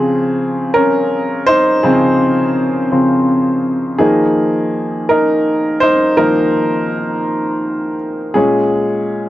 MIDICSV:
0, 0, Header, 1, 2, 480
1, 0, Start_track
1, 0, Tempo, 724638
1, 1219, Time_signature, 6, 3, 24, 8
1, 6154, End_track
2, 0, Start_track
2, 0, Title_t, "Upright piano"
2, 0, Program_c, 0, 0
2, 0, Control_c, 0, 64, 127
2, 0, Note_on_c, 0, 49, 59
2, 0, Note_on_c, 0, 53, 47
2, 0, Note_on_c, 0, 60, 67
2, 0, Note_on_c, 0, 68, 90
2, 92, Note_off_c, 0, 49, 0
2, 96, Note_off_c, 0, 53, 0
2, 473, Note_off_c, 0, 60, 0
2, 473, Note_off_c, 0, 68, 0
2, 489, Note_on_c, 0, 70, 95
2, 493, Note_on_c, 0, 61, 70
2, 950, Note_off_c, 0, 61, 0
2, 970, Note_on_c, 0, 72, 111
2, 983, Note_on_c, 0, 63, 82
2, 989, Note_off_c, 0, 70, 0
2, 1198, Note_off_c, 0, 72, 0
2, 1204, Note_off_c, 0, 63, 0
2, 1213, Note_on_c, 0, 68, 82
2, 1218, Note_on_c, 0, 53, 51
2, 1219, Note_on_c, 0, 49, 60
2, 1224, Note_on_c, 0, 60, 73
2, 1538, Note_off_c, 0, 49, 0
2, 1538, Note_off_c, 0, 53, 0
2, 1926, Note_off_c, 0, 60, 0
2, 1932, Note_on_c, 0, 53, 40
2, 1934, Note_on_c, 0, 49, 45
2, 1936, Note_on_c, 0, 60, 50
2, 2151, Note_off_c, 0, 53, 0
2, 2152, Note_off_c, 0, 49, 0
2, 2153, Note_off_c, 0, 60, 0
2, 2389, Note_off_c, 0, 68, 0
2, 2640, Note_on_c, 0, 68, 82
2, 2644, Note_on_c, 0, 51, 54
2, 2646, Note_on_c, 0, 53, 49
2, 2652, Note_on_c, 0, 58, 62
2, 2652, Note_on_c, 0, 63, 65
2, 2666, Control_c, 0, 64, 0
2, 2788, Control_c, 0, 64, 127
2, 2970, Note_off_c, 0, 51, 0
2, 2971, Note_off_c, 0, 53, 0
2, 2974, Note_off_c, 0, 58, 0
2, 3349, Note_off_c, 0, 63, 0
2, 3372, Note_on_c, 0, 70, 88
2, 3383, Note_on_c, 0, 63, 70
2, 3391, Note_off_c, 0, 68, 0
2, 3834, Note_off_c, 0, 63, 0
2, 3844, Note_on_c, 0, 72, 103
2, 3861, Note_on_c, 0, 63, 81
2, 3870, Note_off_c, 0, 70, 0
2, 4083, Note_off_c, 0, 63, 0
2, 4088, Note_on_c, 0, 51, 55
2, 4088, Note_on_c, 0, 70, 97
2, 4093, Note_on_c, 0, 53, 53
2, 4096, Note_on_c, 0, 58, 62
2, 4098, Note_on_c, 0, 63, 69
2, 4099, Note_off_c, 0, 72, 0
2, 5268, Note_off_c, 0, 70, 0
2, 5273, Note_off_c, 0, 63, 0
2, 5508, Note_off_c, 0, 51, 0
2, 5511, Note_off_c, 0, 53, 0
2, 5512, Note_off_c, 0, 58, 0
2, 5525, Note_on_c, 0, 68, 81
2, 5533, Note_on_c, 0, 46, 56
2, 5535, Note_on_c, 0, 56, 56
2, 5539, Note_on_c, 0, 61, 68
2, 5548, Control_c, 0, 64, 0
2, 5669, Control_c, 0, 64, 127
2, 5856, Note_off_c, 0, 46, 0
2, 5857, Note_off_c, 0, 56, 0
2, 6154, Note_off_c, 0, 61, 0
2, 6154, Note_off_c, 0, 68, 0
2, 6154, End_track
0, 0, End_of_file